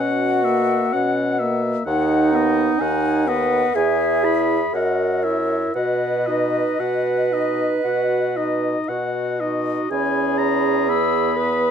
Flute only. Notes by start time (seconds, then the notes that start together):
0.00 F#5
1.86 F#5
2.79 G#5
3.28 F#5
3.76 E5
4.75 D#5
5.23 C#5
5.75 D#5
9.92 B5
10.88 E6
11.38 D#6